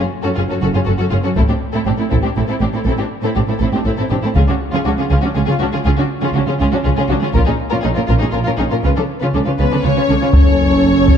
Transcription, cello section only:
0.24 F#2
0.37 F#2
0.49 F#2
0.62 F#2
0.74 F#2
0.87 F#2
0.98 F#2
1.11 F#2
1.24 F#2
1.36 A2
1.48 A2
1.73 A2
1.85 A2
1.98 A2
2.11 A2
2.23 A2
2.36 A2
2.48 A2
2.60 A2
2.72 A2
2.85 A2
2.97 A2
3.22 A2
3.35 A2
3.47 A2
3.60 A2
3.72 A2
3.85 A2
3.97 A2
4.10 A2
4.22 A2
4.35 C#3
4.48 C#3
4.72 C#3
4.85 C#3
4.97 C#3
5.10 C#3
5.22 C#3
5.34 C#3
5.46 C#3
5.59 C#3
5.72 C#3
5.85 C#3
5.97 C#3
6.22 C#3
6.35 C#3
6.46 C#3
6.59 C#3
6.72 C#3
6.84 C#3
6.96 C#3
7.09 C#3
7.22 C#3
7.34 A#2
7.46 A#2
7.72 A#2
7.84 A#2
7.97 A#2
8.09 A#2
8.22 A#2
8.34 A#2
8.46 A#2
8.59 A#2
8.71 A#2
8.83 C#3
8.96 C#3
9.21 C#3
9.34 C#3
9.46 C#3
9.59 C#3
9.71 C#3
9.84 C#3
9.96 C#3
10.09 C#3
10.21 C#3
10.33 F#2

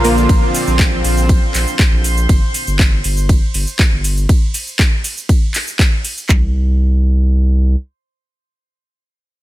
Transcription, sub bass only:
Already playing: A#1
0.29 A#1
0.67 A#1
1.04 A#1
1.54 A#1
1.92 A#1
2.29 G1
2.67 G1
3.05 G1
3.54 G1
3.92 G1
6.29 C2

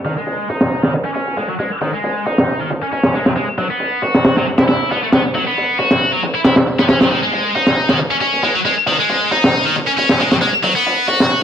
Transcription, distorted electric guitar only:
0.05 D#3
0.17 G#3
0.49 D#4
0.83 D#3
1.05 C#4
1.15 C#4
1.37 G#3
1.49 F#3
1.59 G#3
1.81 D#3
1.94 G#3
2.26 D#4
2.60 D#3
2.82 C#4
2.92 C#4
3.14 G#3
3.26 F#3
3.36 G#3
3.58 F#3
3.70 B3
4.02 F#4
4.36 F#3
4.58 E4
4.68 E4
4.91 B3
5.03 A3
5.13 B3
5.35 F#3
5.47 B3
5.79 F#4
6.12 F#3
6.35 E4
6.45 E4
6.79 B3
6.89 C#4
7.01 F#3
7.11 D#3
7.23 G#3
7.55 D#4
7.89 D#3
8.11 C#4
8.21 C#4
8.43 G#3
8.55 F#3
8.65 G#3
8.88 D#3
8.99 G#3
9.32 D#4
9.65 D#3
9.87 C#4
9.98 C#4
10.20 G#3
10.32 F#3
10.42 G#3
10.63 F#3
10.75 B3
11.07 F#4

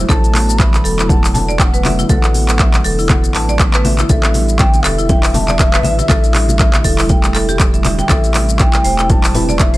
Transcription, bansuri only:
0.09 A5
0.58 B5
1.08 A5
1.33 A5
1.58 G5
1.63 F#5
2.08 F#5
4.10 E5
4.58 G5
4.84 E5
8.10 E5
8.60 G5
9.09 A5
9.60 E5

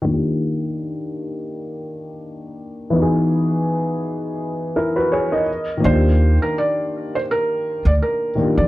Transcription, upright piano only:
0.02 D#3 A#3
0.07 D4 F4
0.14 G4
2.90 E3 B3
2.96 D#4 F#4
3.02 G#4
4.76 E4 A#4
4.96 F#4 B4
5.12 G#4 C#5
5.32 A#4 D#5
5.77 D#3 A#3
5.84 D4 F4
5.90 G4
8.35 D#3 A#3 D4
8.40 F4 G4

